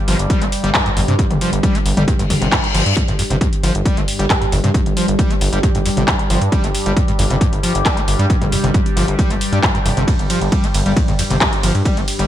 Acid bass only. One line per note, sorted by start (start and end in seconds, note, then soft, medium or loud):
0.08 0.17 F3 medium
0.30 0.43 G3 medium
0.42 0.45 A#3 medium
0.64 0.70 G3 loud
0.75 0.81 G2 medium
0.86 0.90 G2 loud
0.97 1.01 F2 medium
1.08 1.14 C3 medium
1.19 1.25 G2 medium
1.41 1.51 F3 medium
1.63 1.76 G3 medium
1.75 1.78 A#3 medium
1.97 2.03 G3 loud
2.08 2.14 G2 medium
2.19 2.23 G2 loud
2.30 2.34 F2 medium
2.42 2.47 C3 medium
2.52 2.59 G2 medium
2.75 2.84 F3 medium
2.97 3.03 G2 medium
3.08 3.12 G2 loud
3.19 3.23 F2 medium
3.30 3.36 C3 medium
3.41 3.47 G2 medium
3.63 3.73 F3 medium
3.86 3.99 G3 medium
3.97 4.01 A#3 medium
4.19 4.25 G3 loud
4.30 4.36 G2 medium
4.42 4.45 G2 loud
4.52 4.56 F2 medium
4.64 4.70 C3 medium
4.75 4.81 G2 medium
4.97 5.06 F3 medium
5.19 5.32 G3 medium
5.30 5.34 A#3 medium
5.53 5.59 G3 loud
5.63 5.70 G2 medium
5.75 5.78 G2 loud
5.86 5.89 F2 medium
5.97 6.03 C3 medium
6.08 6.14 G2 medium
6.30 6.40 F3 medium
6.52 6.65 G3 medium
6.64 6.67 A#3 medium
6.86 6.92 G3 loud
6.97 7.03 G2 medium
7.08 7.12 G2 loud
7.19 7.23 F2 medium
7.30 7.36 C3 medium
7.41 7.47 G2 medium
7.63 7.73 F3 medium
7.86 7.99 G3 medium
7.97 8.01 A#3 medium
8.19 8.25 G3 loud
8.30 8.36 G2 medium
8.41 8.45 G2 loud
8.52 8.56 F2 medium
8.64 8.70 C3 medium
8.74 8.81 G2 medium
8.97 9.06 F3 medium
9.19 9.32 G3 medium
9.31 9.34 A#3 medium
9.53 9.59 G3 loud
9.63 9.70 G2 medium
9.75 9.78 G2 loud
9.86 9.89 F2 medium
9.97 10.03 C3 medium
10.08 10.14 G2 medium
10.30 10.40 F3 medium
10.52 10.65 G3 medium
10.64 10.67 A#3 medium
10.86 10.92 G3 loud
10.97 11.03 G2 medium
11.08 11.12 G2 loud
11.19 11.23 F2 medium
11.30 11.36 C3 medium
11.41 11.47 G2 medium
11.63 11.73 F3 medium
11.86 11.98 G3 medium
11.97 12.01 A#3 medium
12.19 12.25 G3 loud